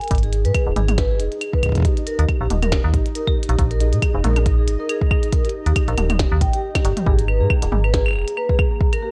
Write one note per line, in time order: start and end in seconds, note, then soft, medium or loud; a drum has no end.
0.01 0.06 A#4 medium
0.01 closed hi-hat soft
0.04 closed hi-hat soft
0.08 0.46 G#1 medium
0.08 kick loud
0.08 closed hi-hat soft
0.11 7.08 D#4 medium
0.11 7.08 D#5 medium
0.11 closed hi-hat medium
0.15 closed hi-hat soft
0.18 closed hi-hat soft
0.23 0.32 G#4 medium
0.23 closed hi-hat soft
0.33 closed hi-hat medium
0.45 0.52 G#2 medium
0.45 0.54 B4 loud
0.45 closed hi-hat soft
0.54 0.66 G#4 medium
0.54 kick loud
0.54 closed hi-hat medium
0.54 claves medium
0.67 0.74 D#1 medium
0.76 1.21 G#1 loud
0.76 0.88 G#4 medium
0.76 closed hi-hat medium
0.76 mid tom medium
0.88 closed hi-hat soft
0.88 mid tom medium
0.88 claves soft
0.98 1.10 B4 loud
0.98 kick loud
0.98 snare loud
0.98 closed hi-hat medium
1.10 1.19 G#4 medium
1.20 1.28 F1 medium
1.20 closed hi-hat medium
1.32 1.41 G#4 medium
1.32 closed hi-hat soft
1.41 closed hi-hat medium
1.41 claves medium
1.54 1.63 B4 loud
1.54 kick loud
1.63 1.75 G#4 medium
1.63 kick medium
1.63 closed hi-hat medium
1.63 claves medium
1.66 kick medium
1.69 kick medium
1.72 kick medium
1.75 kick medium
1.75 closed hi-hat soft
1.78 kick medium
1.80 kick medium
1.82 1.96 G4 medium
1.82 kick loud
1.85 kick loud
1.85 closed hi-hat medium
1.97 closed hi-hat soft
2.07 2.18 A#4 loud
2.07 closed hi-hat medium
2.19 2.26 D#2 medium
2.19 2.28 G4 medium
2.19 closed hi-hat soft
2.28 kick loud
2.28 closed hi-hat medium
2.28 claves medium
2.40 2.47 A#1 medium
2.40 2.50 G4 medium
2.50 2.79 D#1 loud
2.50 closed hi-hat medium
2.50 mid tom medium
2.62 2.71 A#4 medium
2.62 closed hi-hat soft
2.62 mid tom medium
2.62 claves medium
2.72 2.83 G4 medium
2.72 kick loud
2.72 snare loud
2.72 closed hi-hat medium
2.84 2.95 D#2 medium
2.94 3.02 A#1 medium
2.94 3.05 G4 medium
2.94 kick loud
2.94 closed hi-hat medium
3.06 closed hi-hat soft
3.15 3.27 A#4 loud
3.15 closed hi-hat medium
3.27 3.37 G4 medium
3.27 kick loud
3.27 claves medium
3.43 closed hi-hat medium
3.49 3.56 A#1 loud
3.49 3.58 G4 medium
3.49 closed hi-hat medium
3.59 3.94 A#1 medium
3.59 kick loud
3.59 closed hi-hat medium
3.71 3.80 A#4 loud
3.71 closed hi-hat soft
3.81 3.92 G#4 medium
3.81 closed hi-hat medium
3.93 4.00 A#2 medium
3.93 closed hi-hat soft
4.02 4.14 G#4 medium
4.02 kick loud
4.02 closed hi-hat medium
4.02 claves medium
4.14 4.21 F1 medium
4.24 4.69 A#1 loud
4.24 4.36 A#4 loud
4.24 closed hi-hat medium
4.24 mid tom medium
4.27 mid tom medium
4.30 mid tom medium
4.33 closed hi-hat soft
4.33 mid tom soft
4.36 4.45 G#4 medium
4.36 mid tom medium
4.36 claves medium
4.39 mid tom soft
4.41 mid tom soft
4.43 kick loud
4.43 closed hi-hat medium
4.43 mid tom soft
4.58 4.67 G#4 medium
4.67 4.76 G#1 medium
4.67 closed hi-hat medium
4.80 4.89 A#4 loud
4.89 5.01 G#4 medium
4.89 closed hi-hat medium
4.89 claves medium
5.01 kick loud
5.11 5.23 G#4 medium
5.11 kick loud
5.11 claves medium
5.23 closed hi-hat soft
5.33 5.44 A#4 loud
5.33 kick loud
5.33 closed hi-hat medium
5.45 5.54 G4 medium
5.45 closed hi-hat soft
5.50 closed hi-hat medium
5.67 5.74 D#2 medium
5.67 5.76 G4 medium
5.67 closed hi-hat medium
5.76 kick loud
5.76 closed hi-hat medium
5.76 claves medium
5.88 5.95 A#1 medium
5.88 5.97 A#4 loud
5.88 closed hi-hat soft
5.98 6.26 D#1 loud
5.98 6.10 G4 medium
5.98 closed hi-hat medium
5.98 mid tom medium
5.98 claves medium
6.10 closed hi-hat medium
6.10 mid tom loud
6.10 claves medium
6.20 6.31 G4 medium
6.20 kick loud
6.20 snare loud
6.20 closed hi-hat medium
6.32 6.43 D#2 loud
6.41 6.50 A#1 medium
6.41 6.47 G5 loud
6.41 kick loud
6.41 closed hi-hat medium
6.54 6.60 G4 loud
6.54 closed hi-hat medium
6.75 6.82 G4 medium
6.75 kick loud
6.75 snare medium
6.75 closed hi-hat medium
6.75 claves medium
6.85 6.94 G1 loud
6.85 closed hi-hat medium
6.97 7.04 G4 medium
6.97 closed hi-hat medium
6.97 mid tom medium
7.07 7.42 G#1 loud
7.07 9.11 A#3 medium
7.07 7.18 G#4 medium
7.07 9.11 A#5 medium
7.07 kick loud
7.19 closed hi-hat medium
7.28 7.40 B4 loud
7.28 claves medium
7.41 7.47 G#2 medium
7.41 7.50 G#4 medium
7.50 kick loud
7.50 claves medium
7.62 7.69 D#1 medium
7.62 7.71 G#4 medium
7.62 closed hi-hat medium
7.72 8.17 G#1 loud
7.72 mid tom medium
7.84 7.93 B4 loud
7.84 claves medium
7.94 8.05 G#4 medium
7.94 kick loud
7.94 snare loud
7.94 closed hi-hat medium
8.06 claves medium
8.08 claves medium
8.11 claves medium
8.13 8.24 F1 medium
8.13 8.27 G#4 medium
8.13 claves soft
8.15 claves soft
8.18 claves soft
8.21 claves soft
8.27 closed hi-hat medium
8.37 8.49 B4 loud
8.37 claves medium
8.49 8.58 G#4 medium
8.49 kick loud
8.59 kick loud
8.59 claves medium
8.71 8.80 G#4 medium
8.80 kick loud
8.93 9.02 A#4 loud
8.93 closed hi-hat medium
8.93 claves medium
9.02 9.11 G4 medium